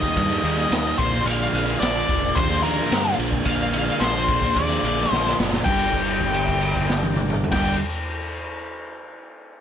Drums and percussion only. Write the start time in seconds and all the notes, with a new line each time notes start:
0.03 kick
0.17 kick, ride
0.45 ride
0.72 snare, ride
0.99 kick, ride
1.27 ride
1.55 ride
1.82 snare, ride
2.09 kick, ride
2.37 kick, ride
2.65 ride
2.92 snare, ride
3.19 ride
3.32 kick
3.45 kick, ride
3.73 ride
4.01 snare, ride
4.28 kick, ride
4.42 kick
4.56 kick, ride
4.85 ride
4.99 snare
5.13 snare
5.26 snare
5.40 snare
5.54 snare
5.66 kick, crash
5.93 kick, crash
6.07 crash
6.21 kick, crash
6.34 crash
6.48 kick, crash
6.61 crash
6.75 kick, crash
6.90 snare
7.03 high tom
7.16 mid tom
7.30 mid tom
7.44 floor tom
7.52 kick, snare, crash